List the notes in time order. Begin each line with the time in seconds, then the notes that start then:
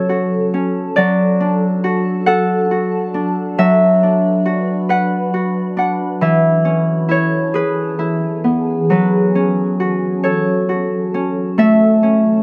Already playing: F#3 C#4 A4 B4 C#5
0.09 F#4
0.54 C#4
0.96 F#3 D4 A4 D5
1.40 D4
1.84 F#4
2.26 A4 F#5
2.71 F#4
3.14 D4
3.58 F#3 B4 E5
4.03 D4
4.46 F#4
4.89 B4 F#5
5.34 F#4
5.77 D4 F#5
6.21 E3 E5
6.65 C#4
7.09 E4 C#5
7.54 G#4 B4
7.99 E4
8.44 B3
8.88 F#3 C#4 A4 B4
9.35 C#4
9.80 F#4
10.24 A4 C#5
10.69 F#4
11.14 C#4
11.57 E3 A3 E5
12.03 C#4